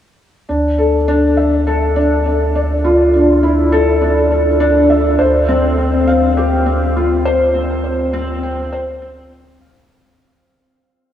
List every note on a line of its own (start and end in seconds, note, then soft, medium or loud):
0.49 5.17 D2 medium
0.49 0.77 D4 medium
0.78 0.95 A4 medium
1.08 1.36 D4 medium
1.37 1.65 E5 medium
1.67 1.95 A4 medium
1.96 2.24 D4 medium
2.26 2.54 D4 medium
2.55 2.72 D5 medium
2.84 3.12 F4 medium
3.13 3.42 D4 medium
3.43 3.71 E4 medium
3.72 4.01 A4 medium
4.01 4.30 D4 medium
4.31 4.48 A4 medium
4.60 4.89 D4 loud
4.90 5.18 E5 medium
5.19 9.88 D2 medium
5.19 5.47 C5 medium
5.49 5.76 C4 medium
5.78 6.06 C4 medium
6.07 6.25 F5 medium
6.37 6.65 G4 medium
6.66 6.95 C4 medium
6.96 7.24 F4 medium
7.25 7.54 C5 loud
7.55 7.83 C4 medium
7.84 8.01 C5 medium
8.13 8.42 C4 loud
8.43 8.71 G5 medium
8.73 9.01 C5 medium
9.02 9.30 C4 loud
9.31 9.60 C4 medium
9.61 9.78 F5 medium